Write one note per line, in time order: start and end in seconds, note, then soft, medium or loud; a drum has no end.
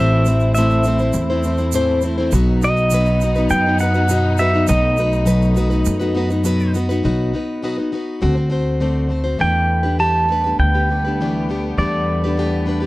0.00 1.10 A1 loud
0.00 0.26 A2 medium
0.00 0.27 E3 medium
0.00 0.25 A3 medium
0.00 2.29 A3 medium
0.00 0.27 C4 medium
0.00 2.29 C4 medium
0.00 0.27 E4 medium
0.00 2.28 E4 medium
0.00 0.27 C5 medium
0.00 0.53 E5 medium
0.26 0.56 A3 medium
0.26 0.56 C4 medium
0.26 0.57 E4 medium
0.26 0.57 C5 medium
0.26 shaker medium
0.40 shaker soft
0.55 0.86 A2 medium
0.55 0.85 E3 medium
0.55 0.84 A3 medium
0.55 0.85 C4 medium
0.55 0.86 E4 medium
0.55 0.86 C5 medium
0.55 1.98 E5 medium
0.55 shaker loud
0.70 shaker soft
0.84 1.00 A3 medium
0.84 1.00 C4 medium
0.84 1.00 E4 medium
0.84 shaker medium
0.88 0.99 C5 medium
0.99 1.30 C4 soft
0.99 1.30 E4 soft
0.99 1.29 C5 soft
0.99 shaker soft
1.03 1.31 A3 soft
1.13 2.28 E2 medium
1.13 shaker loud
1.30 1.43 A3 soft
1.30 1.44 C4 medium
1.30 1.45 E4 medium
1.30 1.44 C5 medium
1.43 1.59 A3 medium
1.43 1.59 C4 medium
1.43 1.58 E4 medium
1.43 1.57 C5 medium
1.43 shaker medium
1.58 1.73 A3 soft
1.58 1.73 C4 soft
1.58 1.73 E4 soft
1.58 1.73 C5 medium
1.58 shaker soft
1.72 2.03 A2 medium
1.72 2.03 E3 medium
1.72 2.02 A3 medium
1.72 2.02 C4 medium
1.72 2.03 E4 medium
1.72 2.04 C5 medium
1.72 shaker loud
2.02 2.17 A3 medium
2.02 2.18 C4 medium
2.02 2.17 E4 medium
2.02 2.16 C5 medium
2.02 shaker medium
2.18 2.34 A3 medium
2.18 2.33 C4 medium
2.18 2.32 E4 medium
2.18 2.32 C5 medium
2.31 3.46 B1 loud
2.31 2.62 B2 medium
2.31 7.00 F#3 medium
2.31 2.62 F#3 medium
2.31 4.65 B3 medium
2.31 2.60 B3 loud
2.31 6.99 D#4 loud
2.31 2.61 D#4 medium
2.31 2.62 F#4 loud
2.31 shaker loud
2.35 2.63 B4 loud
2.61 2.91 B3 medium
2.61 2.92 D#4 medium
2.61 2.92 F#4 medium
2.61 2.93 B4 medium
2.61 3.47 D#5 medium
2.61 shaker medium
2.77 shaker soft
2.90 3.21 B2 medium
2.90 3.21 F#3 medium
2.90 3.21 B3 medium
2.90 3.21 D#4 medium
2.90 3.22 F#4 medium
2.90 3.22 B4 medium
2.90 shaker loud
3.06 shaker soft
3.21 3.36 B3 medium
3.21 3.36 D#4 medium
3.21 3.36 F#4 medium
3.21 3.35 B4 medium
3.21 shaker medium
3.35 3.66 B3 soft
3.35 3.66 D#4 soft
3.35 3.66 F#4 soft
3.35 3.65 B4 medium
3.35 shaker soft
3.50 4.64 F#2 medium
3.50 3.80 G5 loud
3.50 shaker medium
3.66 3.79 B3 soft
3.66 3.80 D#4 soft
3.66 3.81 F#4 soft
3.66 3.80 B4 soft
3.79 3.94 B3 medium
3.79 3.95 D#4 medium
3.79 3.94 F#4 medium
3.79 4.41 F#5 medium
3.79 shaker medium
3.83 3.93 B4 medium
3.94 4.09 B3 soft
3.94 4.09 D#4 soft
3.94 4.09 F#4 soft
3.94 4.09 B4 soft
3.94 shaker soft
4.09 4.38 B2 medium
4.09 4.39 F#3 medium
4.09 4.37 B3 medium
4.09 4.38 D#4 medium
4.09 4.39 F#4 medium
4.09 4.40 B4 medium
4.09 shaker loud
4.38 4.53 B3 medium
4.38 4.53 D#4 medium
4.38 4.53 F#4 medium
4.38 4.52 B4 medium
4.38 4.69 E5 medium
4.38 shaker medium
4.53 4.67 B3 medium
4.53 4.67 D#4 soft
4.53 4.68 F#4 medium
4.53 4.68 B4 medium
4.67 5.82 B1 loud
4.67 4.97 B2 medium
4.67 4.97 F#3 medium
4.67 7.02 A3 medium
4.67 4.96 B3 medium
4.67 4.97 D#4 medium
4.67 4.98 F#4 medium
4.67 4.98 B4 medium
4.67 6.71 D#5 medium
4.67 shaker medium
4.97 5.24 B3 medium
4.97 5.25 D#4 medium
4.97 5.25 F#4 medium
4.97 5.26 B4 medium
4.97 shaker medium
5.12 shaker soft
5.25 5.56 B2 medium
5.25 5.56 F#3 medium
5.25 5.53 B3 medium
5.25 5.54 D#4 medium
5.25 5.56 F#4 medium
5.25 5.57 B4 medium
5.25 shaker loud
5.42 shaker soft
5.54 5.70 B3 medium
5.54 5.71 D#4 medium
5.54 5.70 F#4 medium
5.54 5.69 B4 medium
5.54 shaker medium
5.70 6.02 B3 soft
5.70 6.01 D#4 soft
5.70 6.00 F#4 medium
5.70 5.98 B4 medium
5.70 shaker soft
5.85 7.00 F#2 medium
5.85 shaker loud
6.00 6.13 B3 soft
6.00 6.14 D#4 soft
6.00 6.15 F#4 medium
6.00 6.15 B4 medium
6.00 shaker soft
6.15 6.30 B3 medium
6.15 6.30 D#4 medium
6.15 6.30 F#4 medium
6.15 6.29 B4 medium
6.30 6.44 B3 soft
6.30 6.44 D#4 soft
6.30 6.44 F#4 soft
6.30 6.45 B4 soft
6.30 shaker soft
6.44 6.74 B2 medium
6.44 6.74 F#3 medium
6.44 6.73 B3 medium
6.44 6.74 D#4 medium
6.44 6.75 F#4 medium
6.44 6.75 B4 medium
6.44 shaker medium
6.60 shaker soft
6.74 6.89 B3 medium
6.74 6.90 D#4 medium
6.74 6.90 F#4 medium
6.74 6.88 B4 medium
6.74 shaker medium
6.89 7.03 B3 medium
6.89 7.04 D#4 medium
6.89 7.04 F#4 medium
6.89 7.04 B4 medium
6.89 shaker soft
7.03 7.32 B1 medium
7.03 7.33 B2 medium
7.03 7.34 F#3 medium
7.03 7.32 B3 medium
7.03 7.34 D#4 medium
7.03 7.34 F#4 medium
7.03 7.34 B4 medium
7.34 7.62 B3 medium
7.34 7.63 D#4 medium
7.34 7.63 F#4 medium
7.34 7.64 B4 medium
7.62 7.78 B2 medium
7.62 7.78 F#3 medium
7.62 7.78 B3 medium
7.62 7.78 D#4 medium
7.62 7.77 F#4 medium
7.62 7.76 B4 medium
7.78 7.91 B3 soft
7.78 7.92 D#4 soft
7.78 7.93 F#4 soft
7.78 7.92 B4 soft
7.92 8.21 B3 medium
7.92 8.21 D#4 medium
7.92 8.21 F#4 medium
7.92 8.22 B4 medium
8.21 9.37 D2 loud
8.21 8.36 D3 medium
8.21 8.37 A3 medium
8.21 8.36 C4 medium
8.21 8.36 F#4 medium
8.21 8.34 C5 medium
8.35 8.48 C4 soft
8.35 8.50 F#4 soft
8.35 8.51 C5 medium
8.49 8.80 A3 medium
8.49 8.80 C4 medium
8.49 8.80 F#4 medium
8.49 8.81 C5 medium
8.80 9.10 D3 medium
8.80 9.08 A3 medium
8.80 9.09 C4 medium
8.80 9.10 F#4 medium
8.80 9.11 C5 medium
9.09 9.25 A3 medium
9.09 9.25 C4 medium
9.09 9.24 F#4 medium
9.09 9.23 C5 medium
9.24 9.39 C4 soft
9.24 9.39 F#4 soft
9.24 9.39 C5 medium
9.38 10.55 E2 medium
9.38 9.84 E3 medium
9.38 9.84 A3 medium
9.38 12.86 B3 medium
9.38 9.84 D4 medium
9.38 9.83 G4 medium
9.38 9.82 B4 medium
9.38 9.99 G5 medium
9.42 12.86 G3 medium
9.83 9.99 D4 soft
9.83 9.99 G4 soft
9.83 9.99 B4 medium
9.99 10.29 E3 medium
9.99 10.27 A3 medium
9.99 10.29 D4 medium
9.99 10.29 G4 medium
9.99 10.30 B4 medium
9.99 10.59 A5 medium
10.29 10.44 A3 medium
10.29 10.44 D4 medium
10.29 10.45 G4 medium
10.29 10.43 B4 medium
10.44 10.75 D4 soft
10.44 10.74 G4 soft
10.44 10.73 B4 soft
10.59 11.73 D2 medium
10.59 11.81 G5 medium
10.74 10.89 D4 soft
10.74 10.89 G4 soft
10.74 10.89 B4 soft
10.89 11.03 A3 medium
10.89 11.04 D4 medium
10.89 11.04 G4 medium
10.89 11.03 B4 medium
11.05 11.20 D4 soft
11.05 11.20 G4 soft
11.05 11.19 B4 soft
11.20 11.49 E3 medium
11.20 11.48 A3 medium
11.20 11.48 D4 medium
11.20 11.49 G4 medium
11.20 11.49 B4 medium
11.49 11.78 A3 medium
11.49 11.78 D4 medium
11.49 11.79 G4 medium
11.49 11.79 B4 medium
11.78 12.86 E2 medium
11.78 12.22 E3 medium
11.78 12.22 A3 medium
11.78 12.22 D4 medium
11.78 12.23 G4 medium
11.78 12.23 B4 medium
11.78 12.86 D5 medium
12.24 12.38 D4 soft
12.24 12.38 G4 soft
12.24 12.37 B4 medium
12.37 12.66 E3 medium
12.37 12.64 A3 medium
12.37 12.66 D4 medium
12.37 12.67 G4 medium
12.37 12.67 B4 medium
12.66 12.81 A3 medium
12.66 12.81 D4 medium
12.66 12.81 G4 medium
12.66 12.79 B4 medium
12.80 12.86 D4 soft
12.80 12.86 G4 soft
12.80 12.86 B4 medium